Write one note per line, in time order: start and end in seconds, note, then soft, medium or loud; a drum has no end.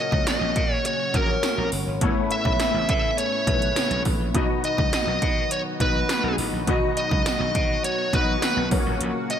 0.00 0.23 A#2 medium
0.00 1.99 C#3 medium
0.00 1.97 F#3 medium
0.00 0.32 A#3 medium
0.00 0.32 C#4 medium
0.00 0.33 F#4 medium
0.00 1.98 F#4 medium
0.00 0.33 C#5 medium
0.00 0.27 D#5 loud
0.12 0.23 C#2 medium
0.12 kick medium
0.27 0.74 D#5 loud
0.27 snare loud
0.27 closed hi-hat medium
0.27 tambourine medium
0.41 0.52 A#1 medium
0.56 0.78 A#2 loud
0.56 kick loud
0.56 closed hi-hat medium
0.74 0.86 C#5 loud
0.85 1.15 C#5 loud
0.85 closed hi-hat loud
1.14 1.36 A#1 loud
1.14 1.70 A#3 medium
1.14 1.70 C#4 medium
1.14 1.71 F#4 medium
1.14 1.69 A#4 medium
1.14 1.71 C#5 medium
1.14 kick medium
1.14 closed hi-hat medium
1.43 snare loud
1.43 closed hi-hat medium
1.43 tambourine medium
1.58 1.69 A#1 medium
1.72 1.83 G1 medium
1.72 open hi-hat medium
1.87 1.98 G#1 medium
2.01 2.12 A1 loud
2.01 2.85 A2 medium
2.01 4.32 C#3 medium
2.01 4.32 A3 medium
2.01 2.76 B3 medium
2.01 8.67 B3 medium
2.01 2.77 E4 medium
2.01 4.32 E4 loud
2.01 2.77 A4 medium
2.01 2.77 C#5 medium
2.01 kick loud
2.01 closed hi-hat medium
2.31 2.89 E5 loud
2.31 closed hi-hat medium
2.45 2.56 B1 medium
2.45 kick medium
2.59 snare loud
2.59 closed hi-hat medium
2.59 tambourine medium
2.74 2.85 A1 medium
2.89 3.11 A2 loud
2.89 3.16 E5 medium
2.89 kick medium
2.89 closed hi-hat medium
3.18 4.02 C#5 medium
3.18 closed hi-hat medium
3.47 3.69 B1 medium
3.47 4.03 B3 medium
3.47 4.03 E4 medium
3.47 4.04 A4 medium
3.47 4.04 B4 medium
3.47 kick medium
3.47 closed hi-hat medium
3.62 closed hi-hat soft
3.76 snare loud
3.76 closed hi-hat medium
3.76 tambourine medium
3.91 4.02 B1 loud
3.91 closed hi-hat medium
4.05 4.16 A1 medium
4.05 kick medium
4.05 open hi-hat medium
4.20 4.31 A#1 medium
4.34 4.45 B1 loud
4.34 5.18 B2 medium
4.34 8.68 D#3 medium
4.34 9.39 F#3 medium
4.34 5.09 B3 medium
4.34 5.10 D#4 medium
4.34 5.10 F#4 medium
4.34 9.39 F#4 loud
4.34 5.10 D#5 loud
4.34 kick loud
4.34 closed hi-hat medium
4.64 4.93 D#5 loud
4.64 closed hi-hat medium
4.78 4.89 C#2 medium
4.78 kick medium
4.93 5.52 D#5 loud
4.93 snare loud
4.93 closed hi-hat medium
4.93 tambourine medium
5.07 5.18 B1 loud
5.22 5.44 B2 medium
5.22 kick loud
5.22 closed hi-hat medium
5.51 5.60 C#5 loud
5.51 closed hi-hat medium
5.79 6.02 B1 medium
5.79 6.36 B3 medium
5.79 6.36 D#4 medium
5.79 6.37 F#4 medium
5.79 6.35 B4 medium
5.79 6.37 D#5 medium
5.79 kick medium
5.79 closed hi-hat medium
6.09 snare loud
6.09 closed hi-hat medium
6.09 tambourine medium
6.24 6.35 B1 medium
6.38 6.49 A1 medium
6.38 open hi-hat medium
6.53 6.64 A#1 medium
6.67 6.78 B1 loud
6.67 7.51 B2 medium
6.67 7.42 B3 medium
6.67 7.42 D#4 medium
6.67 7.43 F#4 medium
6.67 7.43 D#5 loud
6.67 kick loud
6.67 closed hi-hat medium
6.97 7.25 D#5 loud
6.97 closed hi-hat medium
7.11 7.22 C#2 medium
7.11 kick medium
7.26 7.84 D#5 loud
7.26 snare loud
7.26 closed hi-hat medium
7.26 tambourine medium
7.40 7.51 B1 loud
7.55 7.77 B2 loud
7.55 kick medium
7.55 closed hi-hat medium
7.84 8.14 C#5 loud
7.84 closed hi-hat medium
8.12 8.35 B1 medium
8.12 8.69 B3 medium
8.12 8.69 D#4 medium
8.12 8.69 F#4 medium
8.12 8.68 B4 medium
8.12 8.70 D#5 medium
8.12 kick medium
8.12 closed hi-hat medium
8.42 snare loud
8.42 closed hi-hat medium
8.42 tambourine medium
8.57 8.68 B1 loud
8.71 8.82 A#1 loud
8.71 9.39 A#2 medium
8.71 9.39 C#3 medium
8.71 9.39 A#3 medium
8.71 9.39 C#4 medium
8.71 9.39 F#4 medium
8.71 8.78 B4 medium
8.71 kick loud
8.71 open hi-hat medium
8.79 9.39 C#5 medium
8.86 8.97 A1 medium
9.01 9.12 A#1 loud
9.01 closed hi-hat medium
9.30 9.39 D#5 loud
9.30 closed hi-hat medium